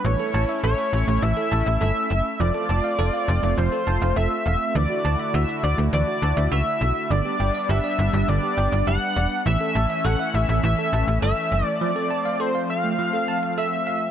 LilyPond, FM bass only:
\new Staff \with { instrumentName = "FM bass" } { \clef bass \time 4/4 \key a \mixolydian \tempo 4 = 102 a,,16 r16 a,,16 r16 a,,16 r16 a,,16 a,,16 a,,16 r16 a,,16 a,,16 g,,16 r16 fis,,16 r16 | f,,16 r16 f,,16 r16 f,,16 r16 f,,16 f,,16 f,,16 r16 f,,16 f,,16 f,,16 r16 e,,16 r16 | d,16 r16 d,16 r16 d,16 r16 d,16 d,16 d,16 r16 d,16 d,16 cis,16 r16 b,,16 r16 | g,,16 r16 g,,16 r16 g,,16 r16 g,,16 g,,16 g,,16 r16 g,,16 g,,16 fis,,16 r16 e,,16 r16 |
a,,16 r16 a,,16 r16 a,,16 r16 a,,16 a,,16 a,,16 r16 a,,16 a,,16 g,,16 r16 fis,,16 r16 | r1 | }